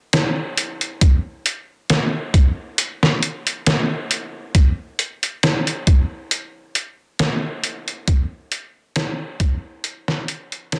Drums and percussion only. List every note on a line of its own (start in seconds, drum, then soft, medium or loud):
0.13 snare loud
0.13 closed hi-hat medium
0.57 closed hi-hat medium
0.81 closed hi-hat soft
1.01 kick loud
1.01 closed hi-hat medium
1.46 closed hi-hat medium
1.90 snare loud
1.90 closed hi-hat medium
2.34 kick loud
2.34 closed hi-hat medium
2.78 closed hi-hat medium
3.03 snare medium
3.23 closed hi-hat medium
3.47 closed hi-hat soft
3.66 snare loud
3.66 closed hi-hat medium
4.11 closed hi-hat medium
4.55 kick loud
4.55 closed hi-hat medium
4.99 closed hi-hat medium
5.23 closed hi-hat soft
5.43 snare loud
5.43 closed hi-hat medium
5.67 closed hi-hat soft
5.87 kick loud
5.87 closed hi-hat medium
6.31 closed hi-hat medium
6.75 closed hi-hat medium
7.19 snare loud
7.19 closed hi-hat medium
7.64 closed hi-hat medium
7.88 closed hi-hat soft
8.08 kick loud
8.08 closed hi-hat medium
8.52 closed hi-hat medium
8.96 snare loud
8.96 closed hi-hat medium
9.40 kick loud
9.40 closed hi-hat medium
9.84 closed hi-hat medium
10.08 snare medium
10.28 closed hi-hat medium
10.52 closed hi-hat soft
10.72 snare loud
10.72 closed hi-hat medium